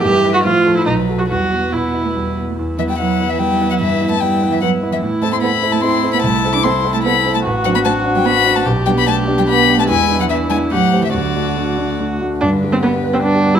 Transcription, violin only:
X:1
M:3/4
L:1/16
Q:1/4=147
K:Em
V:1 name="Violin"
e4 c4 B4 | B8- B2 z2 | z2 e g f3 e g3 f | e3 a g3 e f3 e |
z2 a c' b3 a c'3 b | a3 d' c'3 a b3 a | [K:G] z2 f b a3 g b3 a | z2 g b a3 g b3 a |
_a3 f e2 a2 f3 e | d8 z4 | B12 |]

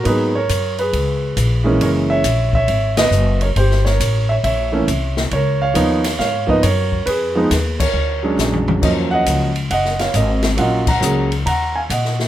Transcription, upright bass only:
X:1
M:4/4
L:1/8
Q:"Swing" 1/4=137
K:Ebm
V:1 name="Upright bass" clef=bass
A,,2 G,,2 D,,2 B,,,2 | G,,,2 B,,,2 A,,,2 G,,,2 | =G,,,2 =A,,,2 B,,,2 =C,,2 | D,,2 E,,2 A,,2 G,,2 |
F,,2 E,,2 =D,,2 B,,,2 | E,,2 D,,2 G,,,2 A,,,2 | B,,,2 D,,2 E,,2 B,,2 |]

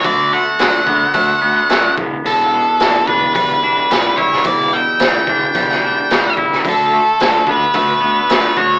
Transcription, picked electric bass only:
X:1
M:4/4
L:1/8
Q:1/4=109
K:Em
V:1 name="Picked electric bass" clef=bass
D,,2 D,, D,, D,, D,, F,, E,,, | E,,,2 E,,, E,,, E,,, E,,, E,,, E,,, | E,,,2 E,,, E,,, E,,, E,,, E,,, E,,, | D,,2 D,, D,, D,, D,, D,, D,, |]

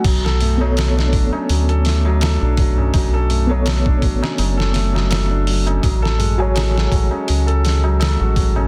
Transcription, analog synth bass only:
X:1
M:4/4
L:1/16
Q:"Swing 16ths" 1/4=83
K:Bdor
V:1 name="Analog synth bass" clef=bass
B,,,6 A,,, z D,,4- D,, B,,,3 | B,,,6 A,,, z F,,,8 | A,,,6 A,,, z C,,4- C,, A,,,3 |]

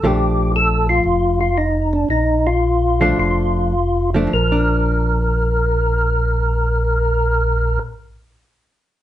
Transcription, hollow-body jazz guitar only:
X:1
M:4/4
L:1/8
Q:"Swing" 1/4=102
K:Bb
V:1 name="Hollow-body jazz guitar"
[F,A,D]4- [F,A,D] z3 | z3 [F,A,D]3 z [F,A,D] | [F,D]8- | [F,D]8 |]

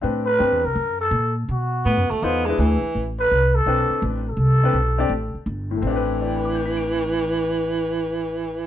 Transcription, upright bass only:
X:1
M:4/4
L:1/8
Q:"Swing" 1/4=166
K:Am
V:1 name="Upright bass" clef=bass
A,,2 (3G,, E,, C,, ^F,,2 ^A,,2 | B,,2 (3A,, ^F,, D,, E,,2 D,, z | A,,,2 C,,2 B,,, z A,,,2 | C,,2 B,,,2 A,,, z G,,,2 |
A,,,8- | A,,,8 |]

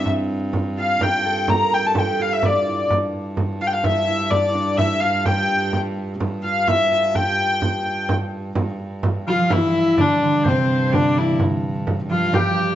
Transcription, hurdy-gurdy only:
X:1
M:3/4
L:1/16
Q:1/4=127
K:Dm
V:1 name="Hurdy-gurdy"
z6 f2 g4 | b2 g a g2 f e d4 | z6 f/2 g/2 f e4 | d4 e2 f2 g4 |
z6 f2 e4 | g8 z4 | z6 F2 E4 | D4 C4 D2 E2 |
z6 F2 G4 |]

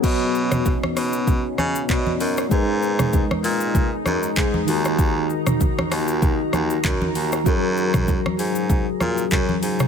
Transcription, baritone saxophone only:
X:1
M:4/4
L:1/16
Q:"Swing 16ths" 1/4=97
K:B
V:1 name="Baritone saxophone" clef=bass
B,,4- B,, z B,,4 C,2 B,,2 F,,2 | G,,4- G,, z A,,4 F,,2 G,,2 D,,2- | D,,4 z2 D,,4 D,,2 F,,2 D,,2 | F,,4- F,, z G,,4 A,,2 F,,2 G,,2 |]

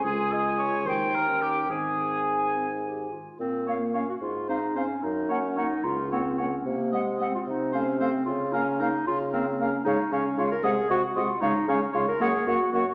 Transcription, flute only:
X:1
M:6/8
L:1/8
Q:3/8=74
K:Ab
V:1 name="Flute"
a3 g3 | a4- a z | [K:Bbm] z f f z f f | z g g z g g |
z g g z f f | z f f z f f | [K:Db] f f f g g g | f f f g g g |]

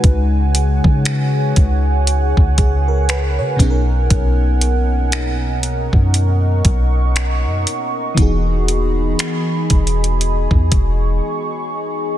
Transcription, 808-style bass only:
X:1
M:4/4
L:1/16
Q:"Swing 16ths" 1/4=59
K:B
V:1 name="808-style bass" clef=bass
C,,3 C,3 C,,3 C,,4 C, B,,,2 | B,,,6- B,,, F,,3 B,,,3 F,, z2 | E,,,4 z2 E,,,3 E,, E,,,2 z4 |]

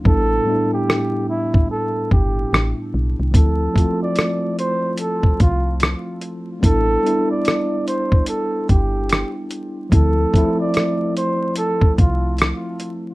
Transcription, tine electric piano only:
X:1
M:4/4
L:1/8
Q:"Swing 16ths" 1/4=73
K:Ddor
V:1 name="Tine electric piano"
[A,,G,B,DE] [A,,G,B,DE]3 z4 | [F,A,CE] [F,A,CF]3 z4 | [G,B,DE] [G,B,DE]3 z4 | [F,A,CE] [F,A,CE]3 z4 |]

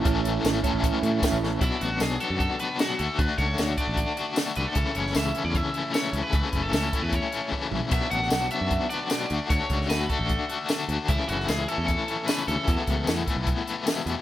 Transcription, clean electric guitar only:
X:1
M:4/4
L:1/8
Q:1/4=152
K:A
V:1 name="Clean electric guitar"
[A,CE]3 [A,CE]3 [A,CE]2 | z8 | z8 | z8 |
z8 | z8 | z8 | z8 |
z8 |]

